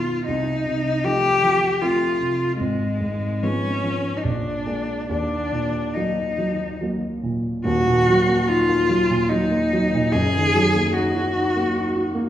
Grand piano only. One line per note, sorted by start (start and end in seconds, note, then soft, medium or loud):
0.00 0.22 B1 soft
0.00 0.29 B2 soft
0.00 0.29 D#3 soft
0.00 0.30 G#3 soft
0.00 0.30 D#4 soft
0.28 2.55 C2 medium
0.66 1.28 C3 soft
1.04 1.39 F3 soft
1.04 1.39 A3 soft
1.04 1.39 C4 soft
1.42 1.80 F3 soft
1.81 2.16 F3 soft
1.81 2.16 A3 soft
1.81 2.17 C4 soft
2.20 2.59 C3 soft
2.60 4.22 G#1 soft
3.00 3.68 G#2 soft
3.43 3.80 F3 soft
3.43 3.80 G#3 soft
3.43 3.80 B3 soft
3.83 4.25 F3 soft
4.24 5.06 A#1 soft
4.66 5.05 G#3 soft
4.66 5.05 A#3 soft
5.09 7.62 D#2 soft
5.52 6.21 A#2 soft
5.96 6.34 F#3 soft
5.96 6.35 A#3 soft
6.38 6.80 F#3 soft
6.81 7.20 F#3 soft
6.81 7.20 A#3 soft
7.23 7.66 A#2 soft
7.64 10.09 D#1 soft
7.64 10.10 D#2 medium
7.86 8.20 A#2 soft
8.08 8.40 F#3 soft
8.28 8.61 A#3 soft
8.47 8.80 D#4 medium
8.68 9.01 A#3 soft
8.89 9.21 F#3 soft
9.11 9.42 A#2 soft
9.30 9.63 F#3 soft
9.51 9.85 A#3 soft
9.73 10.07 F#3 soft
9.94 10.15 A#2 soft
10.14 12.29 F#1 medium
10.14 12.29 F#2 medium
10.35 10.68 D#3 soft
10.55 10.87 F#3 medium
10.75 11.07 A#3 soft
10.95 11.27 D#4 medium
11.15 11.47 F#4 medium
11.37 11.68 D#4 soft
11.56 11.87 A#3 soft
11.77 12.07 D#4 soft
11.96 12.26 F#4 soft
12.15 12.29 A#3 medium